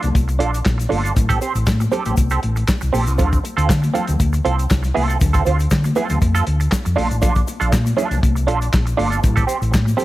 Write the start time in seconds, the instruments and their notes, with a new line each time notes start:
0.03 fingered electric bass C2, muted clean electric guitar stroke, closed hi-hat, high conga, low conga, shaker
0.14 fingered electric bass C2, muted clean electric guitar stroke, kick, closed hi-hat, muted conga, high conga, shaker
0.28 muted clean electric guitar stroke, closed hi-hat, shaker
0.39 fingered electric bass A#1, clean electric guitar D4 F4 A4, closed hi-hat
0.53 muted clean electric guitar stroke, closed hi-hat, shaker
0.65 fingered electric bass A#1, muted clean electric guitar stroke, kick, snare, clap, muted conga, shaker
0.78 muted clean electric guitar stroke, snare, closed hi-hat, shaker
0.89 fingered electric bass G1, clean electric guitar D4 F4 A4, open hi-hat, high conga
1.03 clean electric guitar D4 F4 A4, closed hi-hat, shaker
1.15 fingered electric bass A1, muted clean electric guitar stroke, kick, closed hi-hat, muted conga, low conga, shaker
1.29 clean electric guitar C4 G4 A4, kick, closed hi-hat, shaker
1.41 clean electric guitar C4 G4 C5, closed hi-hat, shaker
1.55 fingered electric bass A1, muted clean electric guitar stroke, closed hi-hat, shaker
1.67 fingered electric bass A2, muted clean electric guitar stroke, kick, snare, clap, muted conga, shaker
1.80 muted clean electric guitar stroke, closed hi-hat, high conga, shaker
1.92 clean electric guitar C4 G4 A4, closed hi-hat, low conga, shaker
2.05 fingered electric bass A1, clean electric guitar C4 G4 A4, closed hi-hat, high conga, low conga, shaker
2.17 fingered electric bass C2, kick, closed hi-hat, muted conga, high conga, shaker
2.30 clean electric guitar C4 G4 A4, closed hi-hat, shaker
2.42 fingered electric bass A1, muted clean electric guitar stroke, closed hi-hat, muted conga
2.56 muted clean electric guitar stroke, closed hi-hat, shaker
2.68 muted clean electric guitar stroke, kick, snare, clap, muted conga, shaker
2.81 fingered electric bass C2, muted clean electric guitar stroke, closed hi-hat, shaker
2.93 fingered electric bass A#1, clean electric guitar C4 G4 A4, open hi-hat, high conga, shaker
3.07 fingered electric bass C2, muted clean electric guitar stroke, closed hi-hat, shaker
3.18 fingered electric bass D2, clean electric guitar C4 F4 A4, kick, closed hi-hat, muted conga, low conga, shaker
3.31 muted clean electric guitar stroke, kick, closed hi-hat, shaker
3.44 muted clean electric guitar stroke, closed hi-hat, muted conga, shaker
3.57 fingered electric bass D2, clean electric guitar C4 F4 A4, closed hi-hat, shaker
3.69 fingered electric bass D3, kick, snare, clap, muted conga, shaker
3.82 muted clean electric guitar stroke, closed hi-hat, high conga, shaker
3.94 clean electric guitar C4 F4 A4, closed hi-hat, muted conga, low conga, shaker
4.07 fingered electric bass D2, muted clean electric guitar stroke, closed hi-hat, high conga, low conga, shaker
4.20 fingered electric bass D2, muted clean electric guitar stroke, kick, closed hi-hat, high conga, shaker
4.33 muted clean electric guitar stroke, closed hi-hat, shaker
4.45 fingered electric bass C2, clean electric guitar C4 F4 A4, closed hi-hat
4.58 muted clean electric guitar stroke, closed hi-hat, shaker
4.70 fingered electric bass C2, muted clean electric guitar stroke, kick, snare, clap, shaker
4.83 muted clean electric guitar stroke, snare, closed hi-hat, shaker
4.94 fingered electric bass C2, clean electric guitar C4 F4 A4, open hi-hat, muted conga, high conga
5.08 clean electric guitar C4 F4 A4, closed hi-hat, shaker
5.19 fingered electric bass D2, muted clean electric guitar stroke, kick, closed hi-hat, low conga, shaker
5.33 clean electric guitar C4 F4 A4, kick, closed hi-hat, shaker
5.45 fingered electric bass D2, clean electric guitar C4 F4 C5, closed hi-hat, shaker
5.59 muted clean electric guitar stroke, closed hi-hat, shaker
5.71 fingered electric bass D3, muted clean electric guitar stroke, kick, snare, clap, muted conga, shaker
5.84 muted clean electric guitar stroke, closed hi-hat, high conga, shaker
5.95 clean electric guitar C4 F4 A4, closed hi-hat, muted conga, low conga, shaker
6.09 fingered electric bass D2, clean electric guitar C4 F4 A4, closed hi-hat, high conga, low conga, shaker
6.21 fingered electric bass F2, muted clean electric guitar stroke, kick, closed hi-hat, muted conga, high conga, shaker
6.35 clean electric guitar C4 F4 A4, closed hi-hat, shaker
6.47 fingered electric bass D2, muted clean electric guitar stroke, closed hi-hat, muted conga
6.60 muted clean electric guitar stroke, closed hi-hat, shaker
6.72 muted clean electric guitar stroke, kick, snare, clap, muted conga, shaker
6.85 fingered electric bass F2, muted clean electric guitar stroke, closed hi-hat, shaker
6.96 fingered electric bass A#1, clean electric guitar D4 F4 A4, open hi-hat, muted conga, high conga
7.10 fingered electric bass A1, muted clean electric guitar stroke, closed hi-hat, shaker
7.22 fingered electric bass A#1, clean electric guitar D4 F4 A4, kick, closed hi-hat, muted conga, low conga, shaker
7.35 muted clean electric guitar stroke, kick, closed hi-hat, shaker
7.47 muted clean electric guitar stroke, closed hi-hat, muted conga, shaker
7.60 fingered electric bass A#1, clean electric guitar D4 F4 A4, closed hi-hat, shaker
7.73 fingered electric bass A#2, kick, snare, clap, muted conga, shaker
7.85 muted clean electric guitar stroke, closed hi-hat, high conga, shaker
7.97 clean electric guitar D4 F4 A4, closed hi-hat, low conga, shaker
8.11 fingered electric bass C2, muted clean electric guitar stroke, closed hi-hat, high conga, low conga, shaker
8.23 fingered electric bass C2, muted clean electric guitar stroke, kick, closed hi-hat, muted conga, high conga, shaker
8.35 muted clean electric guitar stroke, closed hi-hat, shaker
8.47 fingered electric bass A#1, clean electric guitar D4 F4 A4, closed hi-hat, muted conga
8.61 muted clean electric guitar stroke, closed hi-hat, shaker
8.73 fingered electric bass A#1, muted clean electric guitar stroke, kick, snare, clap, muted conga, shaker
8.86 muted clean electric guitar stroke, closed hi-hat, shaker
8.97 fingered electric bass G1, clean electric guitar D4 F4 A4, open hi-hat, muted conga, high conga
9.10 clean electric guitar D4 F4 A4, closed hi-hat, shaker
9.22 fingered electric bass A1, muted clean electric guitar stroke, kick, closed hi-hat, muted conga, low conga, shaker
9.36 clean electric guitar C4 G4 A4, kick, closed hi-hat, shaker
9.47 clean electric guitar C4 G4 C5, closed hi-hat, shaker
9.60 fingered electric bass A1, muted clean electric guitar stroke, closed hi-hat, shaker
9.72 fingered electric bass A2, muted clean electric guitar stroke, kick, snare, clap, muted conga, shaker
9.85 muted clean electric guitar stroke, closed hi-hat, high conga, shaker
9.97 clean electric guitar C4 G4 A4, closed hi-hat, muted conga, low conga, shaker